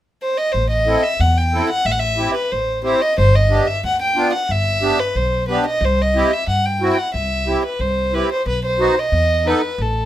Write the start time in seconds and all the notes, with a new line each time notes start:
0.22 C5
0.38 D#5
0.52 A1 C5
0.70 D#5
0.86 C4 E4 A4
1.03 E5
1.20 E2 F#5
1.38 G5
1.53 C4 E4 A4
1.70 F#5
1.85 A1 E5
1.92 F#5
1.99 E5
2.17 C4 E4 G4
2.34 B4
2.51 A1 C5
2.83 C4 E4 G4 C5
3.01 D#5
3.18 G1 C5
3.35 D#5
3.49 B3 D4 G4
3.67 E5
3.84 D2 F#5
4.02 G5
4.16 B3 D4 F4
4.33 F#5
4.49 G1 E5
4.81 B3 D4 G4
5.00 B4
5.15 B1 C5
5.48 B3 D4 G4 B4
5.66 D#5
5.81 C2 C5
6.02 D#5
6.15 C4 E4 G4
6.33 E5
6.47 G2 F#5
6.65 G5
6.81 C4 E4 F#4
6.93 G5
6.98 F#5
7.14 C2 E5
7.46 C4 E4 G4
7.66 B4
7.79 C2 C5
8.13 C4 E4 G4 B4
8.32 C5
8.46 B1 B4
8.65 C5
8.79 B3 D#4 F#4
9.00 D#5
9.12 E2
9.45 B3 D#4 A4 B4
9.78 A1 A4